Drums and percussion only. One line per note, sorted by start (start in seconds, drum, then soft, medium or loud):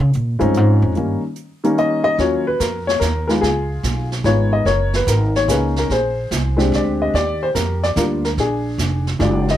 0.13 closed hi-hat medium
0.40 closed hi-hat soft
0.54 closed hi-hat soft
0.95 closed hi-hat soft
1.36 closed hi-hat soft
1.64 closed hi-hat soft
1.78 closed hi-hat soft
2.18 brush sweep soft
2.18 kick soft
2.18 snare soft
2.60 kick soft
2.60 snare medium
2.60 hi-hat pedal soft
2.89 snare soft
3.01 kick soft
3.01 snare medium
3.01 hi-hat pedal soft
3.29 snare soft
3.43 brush sweep soft
3.43 kick soft
3.43 snare soft
3.84 kick soft
3.84 snare medium
3.84 hi-hat pedal medium
4.12 snare soft
4.25 kick soft
4.25 snare soft
4.66 brush sweep soft
4.66 kick soft
4.66 snare soft
4.94 snare medium
5.07 kick soft
5.07 snare medium
5.07 hi-hat pedal medium
5.35 snare soft
5.49 kick soft
5.49 snare medium
5.49 hi-hat pedal medium
5.76 snare soft
5.90 brush sweep soft
5.90 kick soft
5.90 snare soft
6.31 kick soft
6.31 snare medium
6.31 hi-hat pedal medium
6.59 snare soft
6.73 kick soft
6.73 snare soft
7.14 brush sweep soft
7.14 kick soft
7.14 snare soft
7.55 kick soft
7.55 snare medium
7.55 hi-hat pedal medium
7.83 snare soft
7.96 kick soft
7.96 snare medium
7.96 hi-hat pedal soft
8.24 snare soft
8.38 brush sweep medium
8.38 kick soft
8.38 snare soft
8.79 kick soft
8.79 snare medium
8.79 hi-hat pedal soft
9.07 snare soft
9.20 kick soft
9.20 snare soft
9.48 snare soft